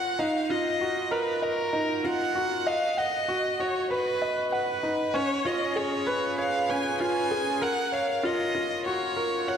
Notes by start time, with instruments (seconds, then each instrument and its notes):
Already playing: felt piano F4 C#5, violin F#5
0.19 felt piano D#4, violin F5
0.50 felt piano F4, violin D#5
0.81 felt piano F#4
1.11 felt piano A#4, violin B4
1.42 violin A#4, felt piano D#5
1.73 felt piano D#4
2.04 felt piano F4, violin F#5
2.35 felt piano F#4
2.67 felt piano D#5, violin F5
2.97 violin D#5, felt piano F#5
3.28 felt piano F#4
3.60 felt piano F#4, violin C#5
3.91 felt piano B4, violin B4
4.22 felt piano D#5
4.52 violin B4, felt piano F#5
4.83 felt piano D#4
5.14 felt piano C#4, violin C#5
5.45 felt piano F4, violin D#5
5.76 felt piano G#4, violin C#5
6.07 felt piano B4
6.38 felt piano C#5, violin F5
6.69 felt piano C#4, violin G#5
7.00 felt piano F4, violin G#5
7.31 felt piano G#4
7.61 felt piano A#4, violin F#5
7.92 felt piano C#5, violin F5
8.23 felt piano F4, violin D#5
8.55 felt piano F4
8.86 felt piano F#4, violin C#5
9.16 felt piano A#4
9.48 felt piano C#5, violin F#5